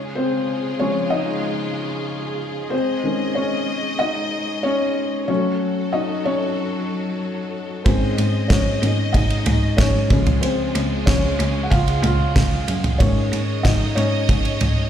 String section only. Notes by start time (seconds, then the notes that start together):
Already playing: C#3 G#3 F4 G#4
2.73 G#3 D#5
5.29 F#3 F#4 A4
7.85 G#3 G#4 D#5
10.10 C#3 G#3 F4
13.00 G#3 C#5 D#5